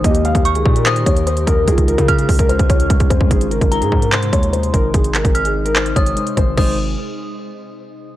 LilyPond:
<<
  \new Staff \with { instrumentName = "Synth bell" } { \time 4/4 \key aes \major \tempo 4 = 147 r4 des'''4 ees'''2 | r4 f'''2 r4 | r4 bes''4 c'''2 | r4 f'''4. ees'''4. |
ees'''8 r2. r8 | }
  \new Staff \with { instrumentName = "Felt piano" } { \time 4/4 \key aes \major ees''8 f''8. aes'8 bes'16 c''8 des''8 c''8 bes'8 | aes'8 bes'8. aes'8 bes'16 c''8 des''4 c''8 | aes'8 bes'8. aes'8 bes'16 c''8 des''8 c''8 bes'8 | aes'8 bes'8. aes'8 bes'16 c''8 des''4 c''8 |
c''8 r2. r8 | }
  \new Staff \with { instrumentName = "Ambient pad" } { \time 4/4 \key aes \major <ees ees' g' bes'>1 | <des des' f' aes'>1 | <c aes ees'>1~ | <c aes ees'>1 |
r1 | }
  \new Staff \with { instrumentName = "Synth keys" } { \time 4/4 \key aes \major <ees bes g'>1 | <des aes f'>1 | <aes ees' c''>1~ | <aes ees' c''>2. <aes ees' c''>4 |
<aes ees' c''>8 r2. r8 | }
  \new Staff \with { instrumentName = "808-style bass" } { \clef bass \time 4/4 \key aes \major ees,8. ees,8 des,16 bes,4 ees,4 ees,8 | des,8. des8. des,8. des,8. des,8 f,8 | aes,,8. aes,,8 aes,16 aes,4 ees,4 aes,,8 | aes,,8. aes,,4.~ aes,,16 aes,,8 r8 aes,,8 |
aes,,4 r2. | }
  \new DrumStaff \with { instrumentName = "Drums" } \drummode { \time 4/4 <hh bd>16 hh16 hh16 <hh bd>16 hh16 hh16 bd16 hh16 <hc hh>16 hh16 <hh bd>16 hh16 hh16 hh16 <hh bd>8 | <hh bd>16 <hh bd>16 hh16 <hh bd>16 <hh bd>16 hh16 <hho bd>16 <hh bd>16 hh16 <hh bd>16 <hh bd>16 hh16 <hh bd>16 <hh bd>16 <hh bd>16 bd16 | <hh bd>16 hh16 hh16 <hh bd>16 hh16 hh16 bd16 hh16 <hc hh>16 hh16 <hh bd>16 hh16 hh16 hh16 <hh bd>8 | <hh bd>16 hh16 <hc hh>16 <hh bd>16 hh16 hh8 hh16 <hc hh>16 hh16 <hh bd>16 hh16 hh16 hh16 <hh bd>8 |
<cymc bd>4 r4 r4 r4 | }
>>